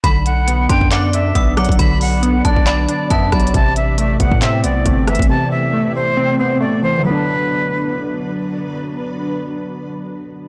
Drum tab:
HH |x-----x-----x-----x-----x-----x-----x-----x-x-x-|x-----o-----x-----x-----x-----x-----x-----x-x-x-|x-----x-----x-----x-----x-----x-----x-----x-x-x-|------------------------------------------------|
CP |------------------------x-----------------------|------------------------x-----------------------|------------------------x-----------------------|------------------------------------------------|
SD |------------------------------------------r-----|------------------------------------------r-----|------------------------------------------r-----|------------------------------------------------|
BD |o-----------------o--o--------------o--------o--|o-----------------o--o--------------o-----o-----|o-----------------o--o--------------o--------o--|------------------------------------------------|

HH |------------------------------------------------|------------------------------------------------|
CP |------------------------------------------------|------------------------------------------------|
SD |------------------------------------------------|------------------------------------------------|
BD |------------------------------------------------|------------------------------------------------|